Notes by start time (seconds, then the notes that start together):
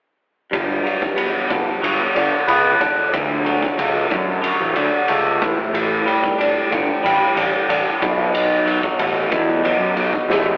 0.51 G1 G2, kick, ride
0.84 F#3, ride
1.02 kick
1.16 B3, ride
1.49 F#1 D3, kick, ride
1.82 G1 F#3, ride
2.15 G1 D3, ride
2.47 C#2 B3, ride
2.80 D3, kick, ride
3.13 D2 D3, kick, ride
3.45 F#3, ride
3.63 kick
3.78 C#2 A3, ride
4.10 F#2 D3, kick, ride
4.42 F#3, ride
4.60 A1
4.75 D2 D3, ride
5.08 C#2 A3, ride
5.41 A1 A2, kick, ride
5.73 A1 A2, ride
6.06 G3, ride
6.24 kick
6.38 D4, ride
6.71 G1 D3, kick, ride
7.03 A1 G3, ride
7.36 A1 D3, ride
7.69 A1 D4, ride
8.01 B1 B2, kick, ride
8.34 B2, ride
8.65 F#3, ride
8.83 kick
8.99 A1 A3, ride
9.31 E2 B2, kick, ride
9.64 F#3, ride
9.79 F#2
9.95 B1 B2, ride
10.13 kick
10.28 A1 A3, snare
10.46 high tom